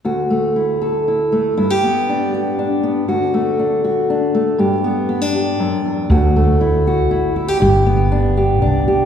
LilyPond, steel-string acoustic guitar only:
\new Staff \with { instrumentName = "Steel-string acoustic guitar" } { \time 3/4 \key d \major \tempo 4 = 119 << { fis'8 a8 e'8 a'8 e'8 a8 | e'16 g'16 b8 d'8 g'8 d'8 b8 | fis'8 a8 d'8 fis'8 d'8 a8 | g'8 b8 b16 d'16 g'4. |
fis'8 a8 e'8 fis'8 e'8 e'16 g'16 | g'8 b8 d'8 g'8 d'8 g'8 | } \\ { d,2. | g,2. | d,2. | g,2 fis,8 e,8 |
d,2. | g,2. | } >> }